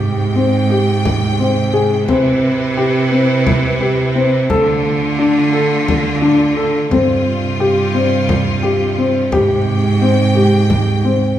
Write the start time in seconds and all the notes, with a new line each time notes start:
Already playing: G#2 C3 G#3 G4 G5
0.35 C4, frame drum
0.70 G4
1.05 frame drum
1.39 C4, frame drum
1.74 G#4
2.07 C3 C4 E4 B4, frame drum
2.43 frame drum
2.77 G4
3.12 C4
3.46 frame drum
3.81 G4
4.15 C4
4.49 D3 A3 F4 A4, frame drum
4.85 frame drum
5.19 D4
5.53 A4
5.88 frame drum
6.22 D4
6.57 A4
6.90 G2 C3 G3 C4 F4, frame drum
7.27 frame drum
7.60 G4
7.94 C4
8.29 frame drum
8.63 G4
8.98 C4
9.31 G#2 G#3 G4 G5, frame drum
10.01 C4
10.35 G4
10.70 frame drum
11.05 C4